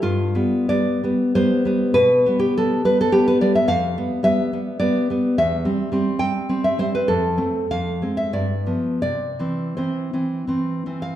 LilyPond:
\new Staff \with { instrumentName = "Nylon-string guitar" } { \time 3/4 \key c \major \tempo 4 = 100 << { f'4 d''4 c''4 | b'8. g'16 a'8 b'16 a'16 g'16 b'16 d''16 e''16 | f''4 e''4 d''4 | e''4. g''8. e''16 c''16 b'16 |
a'4 f''8. e''16 d''4 | d''4 c''4 r8. f''16 | } \\ { g,8 <g b>8 <g b>8 <g b>8 <g b>8 <g b>8 | b,8 <g b>8 <g b>8 <g b>8 <g b>8 <g b>8 | f,8 <g b>8 <g b>8 <g b>8 <g b>8 <g b>8 | e,8 <g c'>8 <g c'>8 <g c'>8 <g c'>8 <g c'>8 |
f,8 <a c'>8 f,8 <aes c'>8 g,8 <f b>8 | c8 <e c'>8 <e c'>8 <e c'>8 <e c'>8 <e c'>8 | } >> }